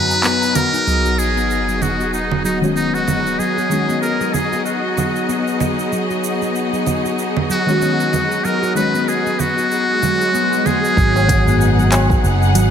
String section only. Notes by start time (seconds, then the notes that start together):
Already playing: B3 D#4 G#4 A#5
0.86 B3 D#4 F#4 G#4 D#5
10.97 B3 D#4 G#4 F#5